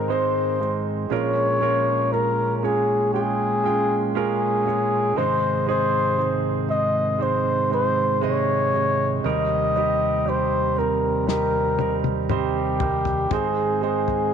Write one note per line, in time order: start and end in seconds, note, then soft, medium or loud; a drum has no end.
0.00 1.07 G#1 soft
0.00 1.06 G#2 soft
0.00 1.07 G#2 soft
0.00 1.07 D#3 soft
0.00 0.08 G#3 medium
0.00 0.09 C4 medium
0.00 1.07 C4 soft
0.00 0.10 D#4 medium
0.00 0.12 A#4 medium
0.00 1.12 A#4 medium
0.00 0.10 C5 medium
0.00 1.13 D#5 medium
0.08 0.57 G#3 medium
0.08 0.58 C4 medium
0.08 0.58 D#4 medium
0.08 0.58 C5 medium
0.08 0.85 C5 medium
0.60 1.08 G#3 medium
0.60 1.08 C4 medium
0.60 1.09 D#4 soft
0.60 1.09 C5 medium
1.10 5.14 A#1 soft
1.10 5.14 A#2 soft
1.10 1.59 G#3 medium
1.10 5.13 G#3 soft
1.10 5.13 C#4 medium
1.10 1.59 C#4 medium
1.10 1.60 F4 medium
1.10 1.60 A#4 medium
1.10 2.14 C#5 medium
1.60 2.09 G#3 medium
1.60 2.10 C#4 medium
1.60 2.10 F4 medium
1.60 2.10 A#4 medium
2.12 2.61 G#3 soft
2.12 2.61 C#4 medium
2.12 2.61 F4 soft
2.12 2.57 A#4 medium
2.12 2.61 A#4 medium
2.57 2.66 A#4 soft
2.63 3.11 G#3 medium
2.63 3.12 C#4 soft
2.63 3.12 F4 soft
2.63 3.13 G#4 medium
2.63 3.12 C#5 medium
3.14 3.62 G#3 medium
3.14 3.63 C#4 medium
3.14 3.63 F4 medium
3.14 4.12 G#4 medium
3.14 3.63 G5 medium
3.64 4.13 G#3 medium
3.64 4.13 C#4 medium
3.64 4.14 F4 medium
3.64 4.14 G5 medium
4.15 4.64 G#3 medium
4.15 4.64 C#4 medium
4.15 4.64 F4 medium
4.15 5.19 G#4 medium
4.15 4.65 A#4 medium
4.65 5.14 G#3 medium
4.65 5.15 C#4 soft
4.65 5.15 F4 medium
4.65 5.15 C#5 medium
5.16 9.20 G#1 soft
5.16 9.20 G#2 soft
5.16 9.21 G#2 medium
5.16 9.20 C3 medium
5.16 9.21 D#3 soft
5.16 5.65 G#3 medium
5.16 5.66 C4 medium
5.16 5.66 D#4 medium
5.16 5.69 C5 medium
5.16 5.66 C5 medium
5.66 6.16 G#3 medium
5.66 6.16 C4 medium
5.66 6.17 D#4 medium
5.66 6.17 G#4 medium
5.66 6.40 C5 medium
6.17 6.67 G#3 medium
6.17 6.67 C4 medium
6.17 6.67 D#4 soft
6.17 6.67 C5 medium
6.68 7.17 G#3 medium
6.68 7.18 C4 soft
6.68 7.18 D#4 soft
6.68 7.19 C5 medium
6.68 7.24 D#5 medium
7.18 7.68 G#3 medium
7.18 7.69 C4 medium
7.18 7.69 D#4 medium
7.18 7.69 C5 medium
7.22 7.73 C5 medium
7.70 8.19 G#3 medium
7.70 8.20 C4 medium
7.70 8.20 D#4 medium
7.70 8.20 C5 medium
8.21 8.71 C3 medium
8.21 8.70 G#3 medium
8.21 8.71 D#4 medium
8.21 9.21 C#5 medium
8.21 8.71 D#5 medium
8.73 9.22 C3 soft
8.73 9.22 G#3 medium
8.73 9.22 D#4 soft
8.73 9.23 D#5 medium
9.24 13.27 D#2 soft
9.24 13.28 D#2 soft
9.24 13.27 C3 soft
9.24 13.27 D#3 soft
9.24 9.73 G3 medium
9.24 13.27 G3 medium
9.24 9.73 C4 medium
9.24 9.73 D#4 medium
9.24 9.73 A#4 medium
9.24 10.31 D#5 medium
9.76 10.24 G3 medium
9.76 10.24 C4 medium
9.76 10.24 D#4 medium
9.76 10.25 G4 medium
10.26 10.74 G3 medium
10.26 10.75 C4 medium
10.26 10.75 D#4 medium
10.26 10.75 G4 medium
10.26 10.80 C5 medium
10.77 11.25 G3 medium
10.77 11.25 C4 soft
10.77 11.26 D#4 soft
10.77 11.26 A#4 medium
10.77 11.28 A#4 medium
11.27 11.76 G3 medium
11.27 11.76 C4 medium
11.27 11.76 D#4 soft
11.27 11.77 G4 medium
11.27 11.99 A#4 medium
11.27 snare soft
11.79 12.27 G3 medium
11.79 12.27 C4 medium
11.79 12.28 D#4 soft
11.79 12.28 A#4 medium
11.79 high tom medium
12.04 high tom soft
12.29 12.78 G3 medium
12.29 12.78 C4 medium
12.29 12.78 D#4 medium
12.29 13.35 G4 medium
12.29 12.79 C5 medium
12.29 mid tom medium
12.80 13.29 G3 medium
12.80 13.29 C4 soft
12.80 13.29 D#4 soft
12.80 13.30 A#4 medium
12.80 floor tom medium
13.05 floor tom medium
13.31 14.34 G#1 soft
13.31 14.34 G#2 soft
13.31 14.34 D#3 soft
13.31 13.80 G#3 medium
13.31 14.34 C4 medium
13.31 13.80 C4 medium
13.31 13.80 D#4 medium
13.31 13.83 G#4 medium
13.31 13.81 C5 medium
13.31 kick medium
13.31 floor tom medium
13.81 14.30 G#3 medium
13.81 14.31 C4 medium
13.81 14.31 D#4 medium
13.81 14.34 G#4 medium
13.81 14.31 C5 medium
14.08 floor tom soft